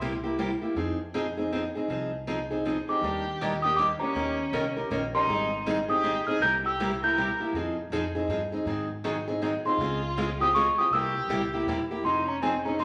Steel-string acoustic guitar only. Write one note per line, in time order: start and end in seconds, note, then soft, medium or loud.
0.01 0.12 C3 medium
0.01 0.12 G3 medium
0.01 0.12 A#3 medium
0.01 0.12 E4 medium
0.01 0.12 G4 loud
0.23 0.38 A#3 soft
0.23 0.38 E4 soft
0.23 0.38 G4 medium
0.39 0.50 C3 medium
0.39 0.50 G3 medium
0.39 0.50 A#3 medium
0.39 0.50 E4 medium
0.39 0.50 G4 medium
0.62 0.76 A#3 soft
0.62 0.76 E4 soft
0.62 0.76 G4 soft
0.76 0.97 F3 medium
0.76 0.97 C4 medium
0.76 0.98 D#4 medium
0.76 0.97 G#4 medium
1.14 1.25 F3 medium
1.14 1.25 C4 medium
1.14 1.25 D#4 medium
1.14 1.26 G#4 medium
1.37 1.51 C4 soft
1.37 1.52 D#4 soft
1.37 1.51 G#4 medium
1.52 1.63 F3 medium
1.52 1.63 C4 medium
1.52 1.63 D#4 medium
1.52 1.63 G#4 medium
1.75 1.88 C4 soft
1.75 1.89 D#4 medium
1.75 1.89 G#4 medium
1.90 2.10 F3 medium
1.90 2.10 C4 medium
1.90 2.11 D#4 medium
1.90 2.11 G#4 medium
2.27 2.38 F3 medium
2.27 2.38 C4 medium
2.27 2.38 D#4 medium
2.27 2.39 G#4 medium
2.51 2.64 C4 soft
2.51 2.65 D#4 soft
2.51 2.64 G#4 medium
2.65 2.76 F3 medium
2.65 2.76 C4 medium
2.65 2.76 D#4 medium
2.65 2.77 G#4 medium
2.88 3.03 C4 soft
2.88 3.02 D#4 soft
2.88 3.02 G#4 soft
3.03 3.24 D#3 medium
3.03 3.24 G3 medium
3.03 3.24 A#3 medium
3.03 3.24 D4 medium
3.03 3.24 G4 medium
3.41 3.52 D#3 loud
3.41 3.52 G3 medium
3.41 3.52 A#3 loud
3.41 3.52 D4 medium
3.41 3.52 G4 loud
3.64 3.78 A#3 soft
3.64 3.78 D4 medium
3.64 3.77 G4 soft
3.78 3.89 D#3 medium
3.78 3.89 G3 medium
3.78 3.89 A#3 medium
3.78 3.89 D4 medium
3.78 3.90 G4 medium
4.01 4.14 A#3 soft
4.01 4.15 D4 soft
4.01 4.15 G4 soft
4.15 4.36 D#3 medium
4.15 4.36 A#3 medium
4.15 4.36 C#4 medium
4.15 4.37 G4 medium
4.15 4.37 A#4 medium
4.53 4.64 D#3 medium
4.53 4.64 A#3 medium
4.53 4.64 C#4 loud
4.53 4.64 G4 loud
4.53 4.64 A#4 medium
4.77 4.90 C#4 soft
4.77 4.90 G4 medium
4.77 4.90 A#4 medium
4.91 5.02 D#3 medium
4.91 5.02 A#3 medium
4.91 5.02 C#4 medium
4.91 5.02 G4 medium
4.91 5.02 A#4 loud
5.14 5.29 C#4 soft
5.14 5.28 G4 medium
5.14 5.28 A#4 medium
5.29 5.49 D#3 medium
5.29 5.49 G3 medium
5.29 5.50 C4 medium
5.29 5.50 D#4 medium
5.29 5.50 G#4 medium
5.66 5.77 D#3 medium
5.66 5.77 G3 medium
5.66 5.77 C4 loud
5.66 5.78 D#4 loud
5.66 5.77 G#4 medium
5.88 6.03 C4 soft
5.88 6.03 D#4 medium
5.88 6.02 G#4 medium
6.03 6.14 D#3 medium
6.03 6.14 G3 medium
6.03 6.15 C4 medium
6.03 6.15 D#4 medium
6.03 6.15 G#4 medium
6.27 6.41 C4 soft
6.27 6.41 D#4 medium
6.27 6.40 G#4 soft
6.42 6.62 C3 medium
6.42 6.62 G3 medium
6.42 6.62 A#3 medium
6.42 6.62 E4 medium
6.42 6.63 G4 medium
6.80 6.90 C3 medium
6.80 6.90 G3 medium
6.80 6.90 A#3 loud
6.80 6.91 E4 medium
6.80 6.91 G4 medium
7.03 7.17 A#3 soft
7.03 7.17 E4 soft
7.03 7.16 G4 medium
7.17 7.28 C3 medium
7.17 7.28 G3 medium
7.17 7.28 A#3 medium
7.17 7.28 E4 medium
7.17 7.28 G4 medium
7.40 7.54 A#3 soft
7.40 7.54 E4 soft
7.40 7.53 G4 medium
7.55 7.75 F3 medium
7.55 7.76 C4 medium
7.55 7.76 D#4 medium
7.55 7.76 G#4 medium
7.92 8.03 F3 medium
7.92 8.03 C4 medium
7.92 8.03 D#4 medium
7.92 8.03 G#4 loud
8.15 8.28 C4 soft
8.15 8.29 D#4 medium
8.15 8.28 G#4 medium
8.30 8.40 F3 medium
8.30 8.40 C4 medium
8.30 8.40 D#4 medium
8.30 8.41 G#4 medium
8.52 8.66 C4 soft
8.52 8.66 D#4 soft
8.52 8.66 G#4 medium
8.66 8.87 D#3 medium
8.66 8.87 F#3 medium
8.66 8.87 C4 medium
8.66 8.88 D#4 medium
8.66 8.88 G#4 medium
9.04 9.15 D#3 loud
9.04 9.15 F#3 medium
9.04 9.15 C4 medium
9.04 9.15 D#4 medium
9.04 9.15 G#4 medium
9.28 9.41 C4 soft
9.28 9.41 D#4 medium
9.28 9.41 G#4 medium
9.42 9.52 D#3 medium
9.42 9.53 F#3 medium
9.42 9.53 C4 medium
9.42 9.53 D#4 medium
9.42 9.53 G#4 medium
9.65 9.79 C4 soft
9.65 9.79 D#4 soft
9.65 9.79 G#4 medium
9.80 10.00 C#3 medium
9.80 10.00 G#3 medium
9.80 10.01 C4 medium
9.80 10.01 F4 medium
9.80 10.01 G#4 medium
10.17 10.28 C#3 loud
10.17 10.28 G#3 loud
10.17 10.28 C4 loud
10.17 10.28 F4 loud
10.17 10.29 G#4 loud
10.40 10.55 C4 soft
10.40 10.54 F4 medium
10.40 10.54 G#4 medium
10.55 10.66 C#3 medium
10.55 10.66 G#3 medium
10.55 10.66 C4 medium
10.55 10.66 F4 medium
10.55 10.66 G#4 medium
10.78 10.92 C4 soft
10.78 10.92 F4 medium
10.78 10.91 G#4 medium
10.92 11.13 C3 medium
10.92 11.13 G3 medium
10.92 11.13 A#3 medium
10.92 11.13 E4 medium
10.92 11.13 G4 medium
11.29 11.40 C3 medium
11.29 11.40 G3 medium
11.29 11.40 A#3 medium
11.29 11.41 E4 loud
11.29 11.41 G4 loud
11.54 11.67 A#3 soft
11.54 11.67 E4 medium
11.54 11.67 G4 medium
11.68 11.78 C3 medium
11.68 11.78 G3 medium
11.68 11.79 A#3 medium
11.68 11.79 E4 medium
11.68 11.79 G4 medium
11.91 12.05 A#3 soft
11.91 12.04 E4 soft
11.91 12.04 G4 medium
12.05 12.26 F3 medium
12.05 12.26 C4 medium
12.05 12.26 D#4 medium
12.05 12.26 G#4 medium
12.42 12.53 F3 medium
12.42 12.53 C4 medium
12.42 12.53 D#4 medium
12.42 12.54 G#4 medium
12.65 12.78 C4 soft
12.65 12.79 D#4 soft
12.65 12.79 G#4 medium
12.79 12.84 F3 medium
12.79 12.84 C4 medium
12.79 12.84 D#4 medium
12.79 12.84 G#4 medium